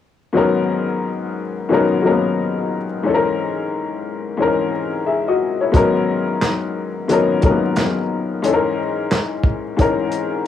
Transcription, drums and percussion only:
5.74 kick, closed hi-hat
6.41 snare, clap, closed hi-hat
7.09 closed hi-hat
7.42 kick, closed hi-hat
7.76 snare, clap, closed hi-hat
8.44 closed hi-hat
9.11 snare, clap, closed hi-hat
9.43 kick
9.79 kick, closed hi-hat
10.12 closed hi-hat

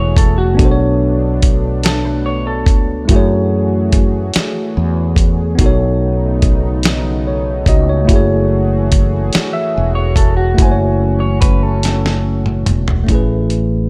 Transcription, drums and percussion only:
0.17 kick, closed hi-hat
0.59 kick, closed hi-hat
1.42 kick, closed hi-hat
1.83 snare, closed hi-hat
2.66 kick, closed hi-hat
3.09 kick, closed hi-hat
3.92 kick, closed hi-hat
4.34 snare, closed hi-hat
5.16 kick, closed hi-hat
5.59 kick, closed hi-hat
6.42 kick, closed hi-hat
6.83 snare, closed hi-hat
7.66 kick, closed hi-hat
8.09 kick, closed hi-hat
8.92 kick, closed hi-hat
9.33 snare, closed hi-hat
10.16 kick, closed hi-hat
10.58 kick, closed hi-hat
11.42 kick, closed hi-hat
11.83 snare, closed hi-hat
12.06 snare
12.46 mid tom
12.66 closed hi-hat, mid tom
12.88 floor tom
13.08 kick, closed hi-hat
13.50 closed hi-hat

